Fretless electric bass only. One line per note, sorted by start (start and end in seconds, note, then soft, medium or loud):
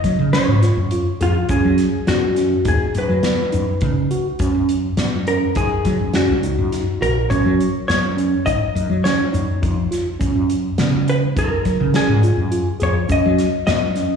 0.04 0.16 F#3 medium
0.19 0.30 C#3 medium
0.48 0.70 G#2 medium
0.77 0.99 F#2 medium
1.21 1.43 F2 medium
1.49 1.61 F#2 medium
1.64 1.87 F#3 medium
2.08 2.53 F#2 medium
2.66 2.77 D#2 medium
2.95 3.06 F#2 medium
3.09 3.32 F#3 medium
3.53 3.65 F#2 medium
3.82 4.04 C#3 loud
4.40 4.51 F#2 loud
4.54 4.88 F#2 medium
4.98 5.43 F#2 medium
5.56 5.68 F#2 medium
5.86 5.97 F#3 medium
6.00 6.11 F#2 medium
6.29 6.52 C#2 medium
6.58 6.81 F#2 medium
7.01 7.24 A#1 medium
7.31 7.42 F#2 medium
7.45 7.68 F#3 medium
7.89 8.34 F#2 medium
8.47 8.58 G#1 medium
8.75 8.87 F#2 medium
8.90 9.12 F#3 medium
9.34 9.45 F#2 medium
9.63 9.85 F2 medium
10.21 10.32 F#2 medium
10.35 10.69 F#2 medium
10.79 11.24 C#3 loud
11.37 11.48 F#2 medium
11.65 11.76 F#3 medium
11.80 11.91 C#3 medium
12.08 12.31 G#2 medium
12.37 12.60 F#2 medium
12.81 13.04 F2 medium
13.10 13.21 F#2 medium
13.25 13.47 F#3 medium
13.68 14.13 F#2 medium